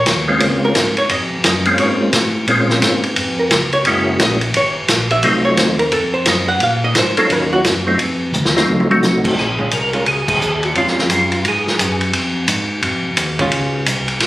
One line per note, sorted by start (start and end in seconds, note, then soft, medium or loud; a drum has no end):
0.00 0.27 C#5 loud
0.06 0.40 D#2 loud
0.06 snare medium
0.06 hi-hat pedal medium
0.06 ride medium
0.28 0.73 G#3 medium
0.28 0.73 A#3 medium
0.28 0.73 C4 medium
0.28 0.73 C#4 medium
0.28 0.73 F4 medium
0.40 0.74 C#2 medium
0.40 ride medium
0.65 0.96 A#4 medium
0.75 1.09 G#2 loud
0.75 snare medium
0.75 hi-hat pedal medium
0.75 ride medium
0.97 1.10 C#5 loud
0.97 ride medium
1.09 1.30 F2 medium
1.09 1.43 D#5 medium
1.09 ride medium
1.31 1.38 F2 soft
1.44 1.78 F#2 loud
1.44 1.77 D#5 medium
1.44 snare medium
1.44 hi-hat pedal medium
1.44 ride medium
1.65 2.11 G#3 medium
1.65 2.11 A#3 medium
1.65 2.11 C4 medium
1.65 2.11 C#4 medium
1.65 2.11 F4 medium
1.65 ride medium
1.78 2.12 G#2 medium
1.78 2.00 C#5 medium
1.78 ride medium
2.12 2.46 A2 loud
2.12 snare medium
2.12 hi-hat pedal medium
2.12 ride medium
2.47 2.81 A#2 medium
2.47 3.00 G#3 medium
2.47 3.00 A#3 medium
2.47 3.00 C4 medium
2.47 3.00 C#4 medium
2.47 3.01 F4 medium
2.47 ride medium
2.70 snare medium
2.82 3.15 G#2 loud
2.82 snare medium
2.82 hi-hat pedal medium
2.82 ride medium
3.03 ride medium
3.16 3.50 F2 medium
3.16 ride medium
3.39 3.71 A#4 medium
3.50 3.84 C#2 medium
3.50 snare medium
3.50 hi-hat pedal medium
3.50 ride medium
3.73 3.85 C#5 loud
3.73 ride medium
3.84 4.18 F#1 medium
3.84 4.38 G#3 medium
3.84 4.38 A#3 medium
3.84 4.38 C#4 medium
3.84 4.38 E4 medium
3.84 4.38 F#4 medium
3.84 ride medium
3.88 4.19 D#5 medium
4.19 4.53 A#1 loud
4.19 4.53 D#5 loud
4.19 snare medium
4.19 hi-hat pedal medium
4.19 ride medium
4.41 ride medium
4.54 4.74 G#1 medium
4.54 4.69 C#5 loud
4.54 ride medium
4.76 4.82 G#1 soft
4.88 5.22 A#1 medium
4.88 snare medium
4.88 hi-hat pedal medium
4.88 ride medium
5.11 5.23 E5 loud
5.11 ride soft
5.22 5.56 C2 medium
5.22 5.75 F#3 medium
5.22 5.75 A3 medium
5.22 5.76 C4 medium
5.22 5.76 D#4 medium
5.22 5.76 F4 medium
5.22 5.44 D#5 medium
5.22 ride medium
5.45 5.57 C#5 loud
5.57 5.91 D#2 loud
5.57 5.79 C5 medium
5.57 snare medium
5.57 hi-hat pedal medium
5.57 ride medium
5.79 5.92 A#4 loud
5.79 ride medium
5.92 6.25 F2 medium
5.92 6.13 A4 loud
5.92 ride medium
6.14 6.26 C5 loud
6.26 6.60 F#2 loud
6.26 6.48 D#5 loud
6.26 snare medium
6.26 hi-hat pedal medium
6.26 ride medium
6.48 6.61 F#5 loud
6.60 6.94 A#2 medium
6.60 6.83 F5 medium
6.60 ride medium
6.84 6.96 D#5 loud
6.95 7.29 G#2 loud
6.95 snare medium
6.95 hi-hat pedal medium
6.95 ride medium
6.99 7.18 C5 loud
7.17 7.62 F#3 medium
7.17 7.62 A#3 medium
7.17 7.62 C#4 medium
7.17 7.62 D#4 medium
7.17 7.62 F4 medium
7.17 7.32 A4 loud
7.17 ride medium
7.29 7.63 D#2 medium
7.29 7.52 A#4 loud
7.29 ride medium
7.53 7.60 F#4 loud
7.63 7.97 F#2 loud
7.63 snare medium
7.63 hi-hat pedal medium
7.63 ride medium
7.87 7.98 F#3 medium
7.87 7.98 A3 medium
7.87 7.98 C4 medium
7.87 7.98 D#4 medium
7.87 7.98 F4 medium
7.98 8.32 F2 medium
7.98 ride medium
8.32 8.66 D#2 loud
8.32 hi-hat pedal medium
8.32 mid tom medium
8.45 snare medium
8.56 8.88 F#3 medium
8.56 8.88 A3 medium
8.56 8.88 C4 medium
8.56 8.88 D#4 medium
8.56 8.88 F4 medium
8.56 snare medium
8.67 9.01 C#2 medium
8.67 high tom medium
8.80 high tom medium
8.91 9.35 F#3 medium
8.91 9.35 A3 medium
8.91 9.35 C4 medium
8.91 9.35 D#4 medium
8.91 9.35 F#4 medium
8.91 high tom loud
9.02 9.36 C2 loud
9.02 snare medium
9.02 hi-hat pedal medium
9.24 kick medium
9.24 crash medium
9.36 9.70 A#1 medium
9.36 9.70 G#4 loud
9.36 snare soft
9.59 9.70 G#3 medium
9.59 9.70 C#4 medium
9.59 9.71 F4 medium
9.59 kick medium
9.71 10.05 C2 medium
9.71 10.04 A#4 medium
9.71 hi-hat pedal medium
9.71 ride medium
9.93 10.05 G#3 medium
9.93 10.05 C#4 medium
9.93 10.05 F4 medium
9.93 ride soft
10.06 10.40 C#2 medium
10.06 10.27 G#4 medium
10.06 ride medium
10.28 10.64 G#4 loud
10.28 kick medium
10.28 crash medium
10.41 10.74 D#2 medium
10.41 hi-hat pedal medium
10.63 10.70 F#4 medium
10.63 ride soft
10.75 11.09 F2 medium
10.75 11.28 G#3 medium
10.75 11.28 C#4 medium
10.75 11.28 F4 medium
10.75 11.10 F4 medium
10.75 ride medium
10.87 snare soft
10.98 snare soft
11.10 11.44 F#2 medium
11.10 11.46 F4 medium
11.10 hi-hat pedal medium
11.10 ride medium
11.32 ride soft
11.44 11.78 G#2 medium
11.44 11.99 G#4 medium
11.44 ride medium
11.67 snare soft
11.79 12.12 F#2 medium
11.79 hi-hat pedal medium
11.79 ride medium
12.01 ride soft
12.13 12.47 F2 medium
12.13 ride medium
12.48 12.82 G#2 medium
12.48 hi-hat pedal medium
12.48 ride medium
12.82 13.03 F2 medium
12.82 ride medium
13.04 13.11 F2 soft
13.17 13.51 D#2 medium
13.17 hi-hat pedal medium
13.17 ride medium
13.39 13.84 G#3 medium
13.39 13.85 C#4 medium
13.39 13.85 F4 medium
13.39 kick soft
13.39 ride soft
13.52 13.86 C#2 medium
13.52 ride medium
13.86 14.20 C2 medium
13.86 hi-hat pedal medium
13.86 ride medium
14.08 ride soft
14.20 14.27 A#1 medium
14.20 snare soft
14.20 ride medium